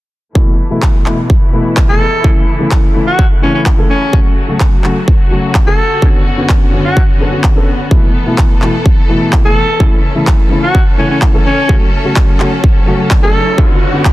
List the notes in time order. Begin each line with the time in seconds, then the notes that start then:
0.35 B2 E3 A3 E4, kick
0.70 B2 E3 A3 E4
0.82 kick, clap
1.05 B2 E3 A3 E4, clap
1.30 kick
1.53 B2 E3 A3 E4
1.77 kick, clap
1.88 B2 E3 A3 G#4 A4
2.24 C#3 E3 A3 E4, kick
2.59 C#3 E3 A3 E4
2.71 kick, clap
2.95 C#3 E3 A3 E4
3.07 F#4
3.19 kick
3.42 C#3 E3 A3 C#4 E4
3.54 C#4
3.66 kick, clap
3.77 C#3 E3 A3 A4
3.90 C#4
4.13 C#3 F#3 A3 F#4, kick
4.48 C#3 F#3 A3 F#4
4.60 kick, clap
4.83 C#3 F#3 A3 F#4, clap
5.08 kick
5.31 C#3 F#3 A3 F#4
5.55 kick, clap
5.66 C#3 F#3 A3 A4
6.02 F#2 D3 B3 C#4 F#4, kick
6.37 D3 B3 C#4 F#4
6.49 kick, clap
6.73 D3 B3 C#4 F#4
6.85 F#4
6.97 kick
7.20 D3 B3 C#4 A4
7.32 D3 B3 C#4 F#4
7.44 kick, clap
7.55 D3 B3 C#4 A4
7.91 B2 E3 A3 E4 A4, kick
8.26 B2 E3 A3 E4
8.38 kick, clap
8.62 B2 E3 A3 E4, clap
8.86 kick
9.09 B2 E3 A3 E4
9.33 kick, clap
9.44 B2 E3 A3 G#4 A4
9.80 C#3 E3 A3 C#4 E4 A4, kick
10.15 C#3 E3 A3 E4
10.27 kick, clap
10.50 C#3 E3 A3 E4
10.63 F#4
10.75 kick
10.98 C#3 E3 A3 C#4 E4
11.10 C#4
11.22 kick, clap
11.33 C#3 E3 A3 A4
11.46 C#4
11.69 C#3 F#3 A3 F#4, kick, riser
12.04 C#3 F#3 A3 F#4
12.16 kick, clap
12.40 C#3 F#3 A3 F#4, clap
12.64 kick
12.87 C#3 F#3 A3 F#4
13.11 kick, clap
13.22 C#3 F#3 A3 A4
13.58 F#2 D3 B3 C#4 F#4, kick
13.93 D3 B3 C#4 F#4
14.05 kick, clap